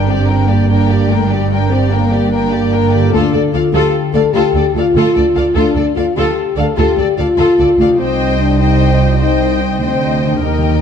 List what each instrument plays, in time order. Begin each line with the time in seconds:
Already playing: double bass section G1, harp G2 G4 A#4, cello section G2
0.06 french horn section C4, violin section G4 D5
0.11 viola section G4
0.28 viola section D4, violin section A#4 G5
0.47 french horn section A#3, violin section G4 D5, viola section G4
0.69 viola section D4, violin section A#4 G5
0.90 violin section G4 D5, viola section G4
1.08 french horn section A3, viola section D4, violin section A#4 G5
1.27 french horn section G3, violin section D5
1.32 violin section G4, viola section G4
1.51 viola section D4, violin section A#4 G5
1.69 french horn section C4, viola section G4, violin section G4 D5
1.89 french horn section A#3, viola section D4, violin section A#4 G5
2.11 viola section G4, violin section G4 D5
2.31 viola section D4, violin section A#4 G5
2.52 violin section G4 D5, viola section G4
2.73 viola section D4, violin section A#4 G5
2.92 harp D3, violin section G4 D5, viola section G4
2.99 harp D4
3.04 harp F4
3.08 harp A4
3.12 double bass section D2, cello section D2, french horn section D4, violin section F4 A4, viola section A4
3.33 cello section D2, double bass section D2, viola section A4, violin section A4 D5
3.53 cello section D2, double bass section D2, french horn section F4, viola section A4, violin section D5 F5
3.72 cello section D2, double bass section D2, violin section F4 A4, french horn section G4, viola section A4
4.13 double bass section D2, cello section D2, french horn section A4, viola section A4, violin section D5 F5
4.33 cello section D2, double bass section D2, violin section F4 A4, french horn section G4, viola section A4
4.55 cello section D2, double bass section D2, viola section A4, violin section A4 D5
4.75 double bass section D2, cello section D2, french horn section F4, viola section A4, violin section D5 F5
4.95 double bass section D2, cello section D2, violin section F4 A4, viola section A4
5.14 cello section D2, double bass section D2, viola section A4, violin section A4 D5
5.35 cello section D2, double bass section D2, viola section A4, violin section D5 F5
5.54 double bass section D2, cello section D2, french horn section D4, violin section F4 A4, viola section A4
5.75 double bass section D2, cello section D2, viola section A4, violin section A4 D5
5.95 cello section D2, double bass section D2, french horn section F4, viola section A4, violin section D5 F5
6.15 double bass section D2, cello section D2, violin section F4 A4, french horn section G4, viola section A4
6.56 double bass section D2, cello section D2, viola section A4, french horn section A4, violin section D5 F5
6.77 double bass section D2, cello section D2, violin section F4 A4, french horn section G4, viola section A4
6.97 double bass section D2, cello section D2, viola section A4, violin section A4 D5
7.17 double bass section D2, cello section D2, french horn section F4, viola section A4, violin section D5 F5
7.38 cello section D2, double bass section D2, violin section F4 A4, viola section A4
7.58 cello section D2, double bass section D2, violin section A4 D5, viola section A4
7.78 cello section D2, double bass section D2, harp C3, viola section A4, violin section D5 F5
7.85 harp D#4
7.90 harp G4
7.95 harp C5
7.99 cello section C2, double bass section C2, french horn section C4, viola section C5, violin section D#5 G5
8.39 french horn section D4
8.59 french horn section D#4, viola section C5, violin section D#5 G5
9.00 french horn section F4
9.20 french horn section D#4, viola section C5, violin section D#5 G5
9.61 french horn section C4
9.81 cello section D2, double bass section D2, french horn section C4, viola section C5, violin section D#5 G5
10.24 harp D#3, french horn section D4
10.30 harp D#4
10.34 harp G4
10.38 harp A#4
10.43 cello section D#2, double bass section D#2, timpani D#3, french horn section D#4, viola section A#4, violin section D#5 G5
10.51 timpani D#3
10.59 timpani D#3
10.68 timpani D#3
10.75 timpani D#3